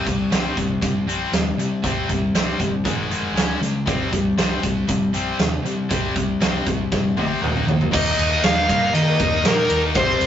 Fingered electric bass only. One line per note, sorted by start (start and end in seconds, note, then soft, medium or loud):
0.06 0.24 C2 medium
0.32 0.49 C2 medium
0.57 0.75 C2 medium
0.83 1.00 G2 medium
1.06 1.24 A#1 medium
1.32 1.50 D#2 medium
1.57 1.75 C3 medium
1.83 2.01 C2 medium
2.09 2.27 C2 medium
2.33 2.51 C2 medium
2.60 2.77 G1 medium
2.85 3.03 G#1 medium
3.11 3.36 F1 medium
3.36 3.53 C#2 medium
3.61 3.89 C#3 medium
3.87 4.05 C2 medium
4.13 4.30 C2 medium
4.37 4.55 C2 medium
4.64 4.81 C2 medium
4.88 5.06 G2 medium
5.13 5.31 A#1 medium
5.39 5.56 D#2 medium
5.65 5.82 C3 medium
5.91 6.08 C2 medium
6.16 6.33 C2 medium
6.42 6.59 C2 medium
6.67 6.84 C2 medium
6.92 7.09 G2 medium
7.17 7.34 A#1 medium
7.42 7.59 D#2 medium
7.66 7.84 D#3 medium
7.93 8.15 D#2 loud
8.17 8.39 D#2 medium
8.43 8.65 D#2 medium
8.69 8.91 G2 medium
8.94 9.16 D#3 medium
9.19 9.41 D#2 medium
9.44 9.66 A#2 medium
9.68 9.91 D#2 medium
9.95 10.17 C2 loud
10.20 10.27 C2 medium